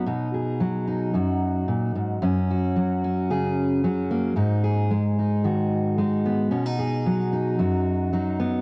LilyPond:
\new Staff \with { instrumentName = "Steel-string acoustic guitar" } { \time 4/4 \key b \major \tempo 4 = 112 << { <dis' fis'>8 gis'4 dis'8 fis'2 | cis'8 fis'4 cis'8 gis'4 cis'8 ais8 | dis'8 gis'4 dis'8 fis'4 dis'8 b8 | cis'16 dis'16 gis'4 dis'8 fis'4 dis'8 b8 | } \\ { b,4 fis4 fis,4 ais,8 gis,8 | fis,4 fis4 cis4 fis4 | gis,4 gis4 dis4 gis4 | b,4 fis4 fis,4 fis4 | } >> }